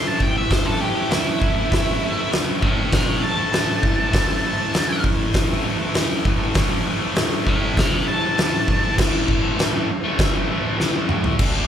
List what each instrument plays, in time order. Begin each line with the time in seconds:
Already playing: distorted electric guitar A2 E3 A3
0.08 lead electric guitar A5
0.19 distorted electric guitar A2 E3 A3, lead electric guitar G5, kick
0.37 lead electric guitar E5
0.51 lead electric guitar C5, kick, snare, open hi-hat
0.65 distorted electric guitar E3 A3, lead electric guitar A4
0.80 distorted electric guitar A2 E3 A3, lead electric guitar G4
0.95 distorted electric guitar E3 A3
1.10 distorted electric guitar A2 E3 A3, lead electric guitar E4, snare, open hi-hat
1.39 distorted electric guitar A2 E3 A3, kick
1.55 distorted electric guitar A3
1.59 distorted electric guitar E3
1.69 distorted electric guitar A2 E3 A3, kick, open hi-hat
1.73 snare
2.01 distorted electric guitar A2 E3 A3
2.16 distorted electric guitar E3 A3
2.29 distorted electric guitar A2 E3 A3, open hi-hat
2.34 snare
2.60 distorted electric guitar A2 E3 A3, lead electric guitar C#5 A5, kick
2.92 lead electric guitar E5 G5, kick, snare, open hi-hat
3.07 distorted electric guitar E3 A3
3.22 distorted electric guitar A2 E3 A3, lead electric guitar A5
3.37 distorted electric guitar E3 A3
3.52 distorted electric guitar A2 E3 A3, snare, open hi-hat
3.83 distorted electric guitar A2 E3 A3, kick
3.97 distorted electric guitar E3 A3
4.12 distorted electric guitar A2 E3, kick, snare, open hi-hat
4.16 distorted electric guitar A3
4.43 distorted electric guitar A2 E3
4.47 distorted electric guitar A3
4.58 distorted electric guitar E3 A3
4.73 distorted electric guitar A2 E3 A3, snare, open hi-hat
5.03 distorted electric guitar A2 E3 A3, kick
5.34 kick, snare, open hi-hat
5.49 distorted electric guitar E3 A3
5.64 distorted electric guitar A2 E3 A3
5.79 distorted electric guitar A3
5.83 distorted electric guitar E3
5.94 distorted electric guitar A2 E3 A3, snare, open hi-hat
6.24 distorted electric guitar A2 E3, kick
6.28 distorted electric guitar A3
6.39 distorted electric guitar E3 A3
6.54 distorted electric guitar A2 E3 A3, kick, snare, open hi-hat
6.85 distorted electric guitar A2 E3
6.89 distorted electric guitar A3
7.00 distorted electric guitar A3
7.05 distorted electric guitar E3
7.14 distorted electric guitar A2 E3, snare, open hi-hat
7.19 distorted electric guitar A3
7.45 distorted electric guitar A2 E3 A3, lead electric guitar C#5 A5, kick
7.77 lead electric guitar E5 G5, kick, snare, open hi-hat
7.92 distorted electric guitar A3
7.96 distorted electric guitar E3
8.06 distorted electric guitar A2 E3 A3, lead electric guitar A5
8.22 distorted electric guitar E3 A3
8.37 distorted electric guitar A2 E3 A3, snare, open hi-hat
8.67 distorted electric guitar A2 E3, kick
8.72 distorted electric guitar A3
8.82 distorted electric guitar E3 A3
8.98 distorted electric guitar A2 E3 A3, kick, snare, crash
9.28 kick
9.42 distorted electric guitar E3 A3
9.57 distorted electric guitar A2 E3 A3, snare, crash
9.73 distorted electric guitar E3 A3
9.89 muted distorted electric guitar stroke
10.03 distorted electric guitar E3 A3
10.19 kick, snare, crash
10.34 distorted electric guitar A3
10.38 distorted electric guitar E3
10.48 distorted electric guitar A2 E3 A3
10.78 distorted electric guitar A2 E3 A3, snare
10.93 distorted electric guitar E3 A3
11.07 distorted electric guitar A2 E3 A3, mid tom
11.22 distorted electric guitar A3, floor tom
11.27 distorted electric guitar E3
11.38 distorted electric guitar D3 A3 D4, kick, crash